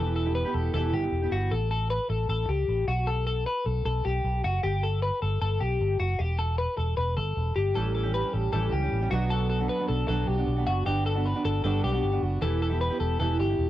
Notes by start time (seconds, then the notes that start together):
Already playing: E1 E3 B3 E4 A4
0.00 G4
0.16 A4
0.25 B3 E4 G4
0.35 B4
0.45 B3 E4 G4
0.54 E1 A4
0.74 E1 E3 B3 E4 G4 A4
0.93 G1 G4
1.03 B3 E4 G4
1.12 E1
1.22 B3 E4 G4
1.32 G1 F#4
1.51 A1 A4
1.71 A4
1.90 B4
2.10 A1 A4
2.29 A1 A4
2.48 C#2 G4
2.68 A1
2.88 B1 F#4
3.07 A4
3.27 A4
3.46 B4
3.66 B1 A4
3.85 B1 A4
4.05 B1 G4
4.24 B1
4.44 F#1 F#4
4.63 G1 G4
4.83 A4
5.03 B4
5.22 G1 A4
5.41 G1 A4
5.61 B1 G4
5.80 G1
6.00 F#1 F#4
6.19 E1 G4
6.39 A4
6.58 B4
6.77 E1 A4
6.97 E1 B4
7.17 G1 A4
7.37 E1
7.56 G1 G4
7.75 A1 E3 G3 C#4 G4 A4
7.95 A4
8.03 G3 C#4 G4
8.14 B4
8.23 G3 C#4 G4
8.33 A1 A4
8.52 A1 E3 G3 C#4 G4 A4
8.73 C#2 G4
8.82 G3 C#4 G4
8.92 A1
9.01 G3 C#4 G4
9.11 B1 B2 F#3 B3 D4 F#4
9.30 A4
9.50 A4
9.60 B3 D4 F#4
9.69 B4
9.79 B3 D4 F#4
9.88 B1 A4
10.08 B1 F#3 B3 D4 F#4 A4
10.27 B1 G4
10.37 B3 D4 F#4
10.47 B1
10.56 B3 D4 F#4
10.67 F#1 F#4
10.85 G1 G3 B3 D4 F#4 G4
11.06 A4
11.15 B3 D4 F#4
11.26 B4
11.34 B3 D4 F#4
11.45 G1 A4
11.64 G1 G3 B3 D4 F#4 A4
11.84 B1 G4
11.92 B3 D4 F#4
12.03 G1
12.12 B3 D4 F#4
12.22 F#1 F#4
12.41 E1 E3 B3 E4 G4 A4
12.62 A4
12.70 B3 E4 G4
12.81 B4
12.90 B3 E4 G4
13.00 E1 A4
13.19 E1 E3 B3 E4 G4 A4
13.39 G1 G4
13.49 B3 E4 G4
13.59 E1